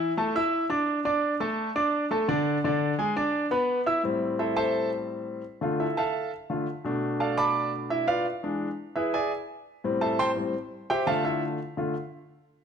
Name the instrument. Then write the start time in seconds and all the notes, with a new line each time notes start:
grand piano
Already playing: E3 E4 E5
0.17 A3 A4 A5
0.35 E4 E5 E6
0.70 D4 D5 D6
1.05 D4 D5 D6
1.40 A3 A4 A5
1.76 D4 D5 D6
2.11 A3 A4 A5
2.28 D3 D4 D5
2.64 D3 D4 D5
2.98 G#3 G#4 G#5
3.16 D4 D5 D6
3.51 B3 B4 B5
3.86 E4 E5 E6
4.04 A2 G3 C4
4.39 E4 A4 C5 E5
4.57 A4 C5 E5 A5
5.61 D3 A3 F4
5.80 E4 A4 E5
5.97 A4 E5 F5 A5
6.50 D3 A3 F4
6.84 B2 A3 D4
7.20 A4 D5 F5 A5
7.38 D5 A5 B5 D6
7.90 E4 E5
8.08 F4 B4 D5 F5
8.43 E3 G#3 D4
8.96 E4 G#4 B4 E5
9.14 G#4 D5 E5 G#5
9.84 A2 G3 C4
10.01 A4 C5 E5 A5
10.19 C5 G5 A5 C6
10.36 A2 G3 C4
10.90 G4 C5 E5 G5
11.06 D3 A3 F4 A4 E5 F5 A5
11.25 E4 A4 E5
11.77 D3 A3 F4